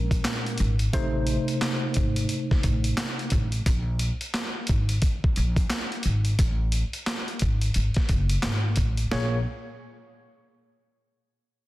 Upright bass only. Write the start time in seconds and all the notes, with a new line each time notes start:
Already playing: A#1
0.60 G#1
0.94 A1
1.97 G#1
2.52 muted upright bass stroke
2.64 A1
3.32 A1
3.67 A#1
4.70 G#1
5.24 muted upright bass stroke
5.37 A#1
6.05 G#1
6.39 A1
7.42 G#1
7.76 G#1
7.97 muted upright bass stroke
8.10 F#1
8.44 G#1
8.77 A1
9.12 A#1